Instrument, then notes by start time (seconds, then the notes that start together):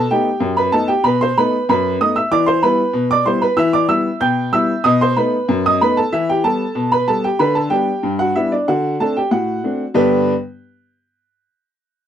upright piano
0.11 A3 B3 D#4 G4 G5
0.40 F#2
0.57 B4 B5
0.72 A3 B3 D#4 A4 A5
0.88 G4 G5
1.04 B2 B4 B5
1.21 C5 C6
1.38 A3 B3 D#4 B4 B5
1.69 F#2 B4 B5
2.01 A3 B3 D#4 D#5 D#6
2.16 E5 E6
2.31 E3 D5 D6
2.46 C5 C6
2.63 G3 B3 E4 B4 B5
2.93 B2
3.11 D5 D6
3.26 G3 B3 E4 C5 C6
3.42 B4 B5
3.57 E3 E5 E6
3.73 D5 D6
3.89 G3 B3 E4 E5 E6
4.20 B2 G5 G6
4.53 G3 B3 E4 E5 E6
4.84 B2 D#5 D#6
5.01 C5 C6
5.16 A3 B3 D#4 B4 B5
5.49 F#2
5.66 D#5 D#6
5.81 A3 B3 D#4 B4 B5
5.97 A4 A5
6.12 E3 E4 E5
6.29 G4 G5
6.44 G3 B3 A4 A5
6.75 B2
6.92 B4 B5
7.08 G3 B3 A4 A5
7.24 G4 G5
7.39 D3 B4 B5
7.55 A4 A5
7.70 G3 B3 D4 G4 G5
8.03 G2
8.19 F#4 F#5
8.35 G3 B3 D4 E4 E5
8.52 D4 D5
8.68 D3 F#4 F#5
9.00 A3 C4 D4 A4 A5
9.17 G4 G5
9.31 A2 F#4 F#5
9.64 A3 C4 D4
9.94 G2 D3 B3 D4 G4 B4 G5